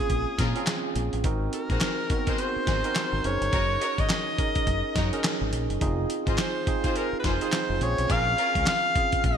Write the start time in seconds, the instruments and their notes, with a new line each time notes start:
Already playing: tine electric piano A#3 C4 C#4 F4 G#4, alto saxophone G#4
0.10 fingered electric bass A#1, kick, closed hi-hat
0.38 fingered electric bass A#2, string section C#4 F4 G#4 A#4, kick, snare, closed hi-hat
0.56 tine electric piano C4 C#4 F4 G#4, closed hi-hat
0.67 snare, clap, closed hi-hat
0.96 fingered electric bass A#1, closed hi-hat
1.13 fingered electric bass A1, closed hi-hat
1.24 fingered electric bass G#1, tine electric piano C4 D#4 F#4 A#4, kick, closed hi-hat
1.53 alto saxophone A#4, closed hi-hat
1.70 fingered electric bass A#1, string section D#4 F#4 G#4 C5, kick, closed hi-hat
1.81 snare, clap, closed hi-hat
2.10 tine electric piano B3 D#4 F#4 A#4, kick, closed hi-hat
2.17 tine electric piano C4
2.27 string section D#4 F#4 G#4 C5, kick, closed hi-hat
2.38 alto saxophone C5, closed hi-hat
2.56 muted fingered electric bass stroke
2.67 fingered electric bass G#1, string section D#4 F#4 G#4 C5, kick, snare, closed hi-hat
2.84 tine electric piano C4 D#4 F#4 A#4, closed hi-hat
2.95 snare, clap, closed hi-hat
3.13 fingered electric bass G#1
3.24 fingered electric bass F#1, tine electric piano C#4 D#4 G#4 A#4, alto saxophone C#5, closed hi-hat
3.41 fingered electric bass G1, closed hi-hat
3.52 fingered electric bass F#1, string section D#4 F#4 A#4 C#5, kick, closed hi-hat
3.81 string section D#4 F#4 A#4 C#5, closed hi-hat
3.98 fingered electric bass G#1, alto saxophone D#5, kick, closed hi-hat
4.09 snare, clap, closed hi-hat
4.38 tine electric piano C#4 D#4 G#4 A#4, kick, closed hi-hat
4.55 kick, closed hi-hat
4.67 fingered electric bass F#1, kick, closed hi-hat
4.95 fingered electric bass F#2, string section D#4 F#4 A#4 C#5, kick, snare, closed hi-hat
5.13 tine electric piano C#4 D#4 G#4 A#4, closed hi-hat
5.24 snare, clap, closed hi-hat
5.41 fingered electric bass G#1
5.53 fingered electric bass A#1, closed hi-hat
5.70 fingered electric bass F#1, closed hi-hat
5.81 fingered electric bass F1, tine electric piano C4 D#4 F4 G#4, kick, closed hi-hat
6.10 closed hi-hat
6.27 fingered electric bass G#1, string section D#4 F4 G#4 C5, kick, closed hi-hat
6.38 alto saxophone C5, snare, clap, closed hi-hat
6.67 tine electric piano C4 D#4 F4 G#4, kick, closed hi-hat
6.84 string section D#4 F4 G#4 C5, kick, closed hi-hat
6.96 alto saxophone A#4, closed hi-hat
7.13 muted fingered electric bass stroke
7.20 string section D#4, alto saxophone B4
7.24 fingered electric bass F1, string section F4 G#4 C5, alto saxophone C5, kick, snare, closed hi-hat
7.41 tine electric piano C4 D#4 F4 G#4, closed hi-hat
7.52 snare, clap, closed hi-hat
7.70 fingered electric bass F1
7.81 fingered electric bass A#1, tine electric piano C4 C#4 F4 G#4, alto saxophone C#5, closed hi-hat
7.98 fingered electric bass B1, closed hi-hat
8.09 fingered electric bass A#1, string section C#4 F4 G#4 A#4, alto saxophone F5, kick, closed hi-hat
8.38 string section C#4 F4 G#4 A#4, closed hi-hat
8.55 fingered electric bass C#2, kick, closed hi-hat
8.66 alto saxophone F5, snare, clap, closed hi-hat
8.95 tine electric piano C4 C#4 F4 G#4, kick, closed hi-hat
9.12 kick, closed hi-hat
9.24 fingered electric bass A#1, alto saxophone C#5, kick, closed hi-hat